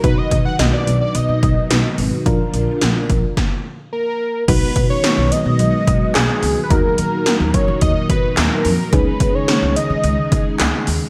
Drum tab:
CC |--------|--------|x-------|--------|
HH |xxxxxxxo|xxxx----|xxxxxxxo|xxxxxxxo|
CP |--------|--------|------x-|------x-|
SD |--o---o-|--o-o---|--o---o-|--o---o-|
BD |oo---o--|o--oo---|oo---o--|o--ooo--|

CC |--------|
HH |xxxxxxxo|
CP |------x-|
SD |--o---o-|
BD |oo---o--|